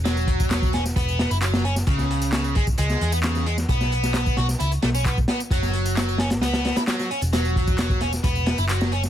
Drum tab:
HH |x-x-x-x-x-x-x-x-|x-xxx-x-x-x-x-x-|x-x-x-x-xxx-x-x-|x-xxx-xxxxxxx-xx|
TB |xx-xxx-xxx-xxx-x|xx-xxx-xxx-xxx-x|xx-xxx-xxx-xxx-x|xx-xxx-xxx-xxx-x|
CP |----x-------x---|----x-------x---|----x-------x---|----x-------x---|
SD |o---o-oo--o--o-o|-o--o----o--oo-o|-o-oo-oo--o---o-|-o--o-oooooooo--|
BD |--oo-o--o-------|o-----oo--------|o----o------oo--|o---------------|

HH |x-x-x-x-x-x-x-x-|
TB |xx-xxx-xxx-xxx-x|
CP |----x-------x---|
SD |o---o-oo--o--o-o|
BD |--oo-o--o-------|